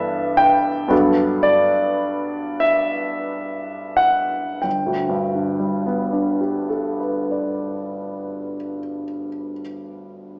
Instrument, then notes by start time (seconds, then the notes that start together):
grand piano
Already playing: G2 E3 B3 D4 A4 D5 E5
0.37 G5
0.88 G2 F#3 B3 D4 A4
1.43 D5
2.60 E5
3.97 F#5
4.62 G1 G5
4.86 D2
5.09 G2
5.35 D3
5.59 G3
5.86 B3
6.12 D4
6.41 G4
6.69 A4
7.00 B4
7.31 D5